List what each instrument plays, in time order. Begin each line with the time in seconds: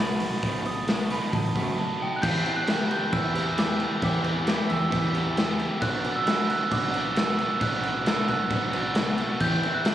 Already playing: fingered electric bass B1, overdriven electric guitar B2 F#3 A3 D#4
0.00 overdriven electric guitar F#3 F#4, glockenspiel B5
0.20 overdriven electric guitar B2 F#3 D#4, open hi-hat
0.43 fingered electric bass B1, overdriven electric guitar B2 F#3 A3, kick, open hi-hat
0.65 overdriven electric guitar B2 F#3 A3, glockenspiel D#6, open hi-hat
0.87 overdriven electric guitar B2 F#3 F#4, snare, open hi-hat
1.10 overdriven electric guitar B2 F#3 A3 D#4, glockenspiel B5, open hi-hat
1.32 fingered electric bass A1, overdriven electric guitar B2 F#3, glockenspiel A5, kick, open hi-hat
1.55 fingered electric bass F#2, overdriven electric guitar B2 F#3 A3, kick, open hi-hat
1.77 overdriven electric guitar B2 F#3 F#4, glockenspiel A5
2.00 overdriven electric guitar B2 F#3 D#4, glockenspiel G5
2.16 glockenspiel F#6
2.22 fingered electric bass E2, overdriven electric guitar E3 B3 E4 G4, glockenspiel G6, kick, crash
2.45 overdriven electric guitar B3 E4 G4, crash
2.56 glockenspiel F#6
2.67 overdriven electric guitar E3 B3 E4 G4, snare, crash
2.91 glockenspiel G6, crash
3.12 fingered electric bass E2, overdriven electric guitar E3 B3 E4 G4, glockenspiel E6, kick, crash
3.35 overdriven electric guitar B3 E4 G4, crash
3.58 overdriven electric guitar E3 B3 E4 G4, glockenspiel D6, snare, crash
3.80 overdriven electric guitar B3 E4 G4, crash
4.02 fingered electric bass E2, overdriven electric guitar E3 B3 E4 G4, glockenspiel D6, kick, crash
4.24 overdriven electric guitar B3 E4 G4, crash
4.47 overdriven electric guitar E3 B3 E4 G4, glockenspiel D6, snare, crash
4.70 fingered electric bass E2, glockenspiel E6, crash
4.91 fingered electric bass E2, overdriven electric guitar E3 B3 E4 G4, kick, crash
5.14 overdriven electric guitar B3 E4 G4, crash
5.37 overdriven electric guitar E3 B3 E4 G4, snare, crash
5.59 overdriven electric guitar B3 E4 G4, crash
5.82 fingered electric bass B1, overdriven electric guitar B2 F#3 B3 D4 F#4, glockenspiel F#6, kick, crash
6.04 overdriven electric guitar B3 D4 F#4, crash
6.16 glockenspiel E6
6.26 overdriven electric guitar F#3 B3 D4 F#4, snare, crash
6.50 glockenspiel F#6, crash
6.71 fingered electric bass B1, overdriven electric guitar F#3 B3 D4 F#4, glockenspiel D6, kick, crash
6.94 overdriven electric guitar B3 D4 F#4, crash
7.15 overdriven electric guitar B2 F#3 B3 D4 F#4, glockenspiel E6, snare, crash
7.38 overdriven electric guitar B3 D4 F#4, crash
7.60 fingered electric bass B1, overdriven electric guitar B2 F#3 B3 D4 F#4, glockenspiel F#6, kick, crash
7.83 overdriven electric guitar B3 D4 F#4, crash
8.05 overdriven electric guitar F#3 B3 D4 F#4, glockenspiel E6, snare, crash
8.28 fingered electric bass B1, glockenspiel F#6, crash
8.50 fingered electric bass B1, overdriven electric guitar F#3 B3 D4 F#4, kick, crash
8.73 overdriven electric guitar B3 D4 F#4, crash
8.94 overdriven electric guitar B2 F#3 B3 D4 F#4, snare, crash
9.18 overdriven electric guitar B3 D4 F#4, crash
9.40 fingered electric bass E2, overdriven electric guitar E3 B3 E4 G4, glockenspiel G6, kick, crash
9.63 overdriven electric guitar B3 E4 G4, crash
9.75 glockenspiel F#6
9.85 overdriven electric guitar E3 B3 E4 G4, snare, crash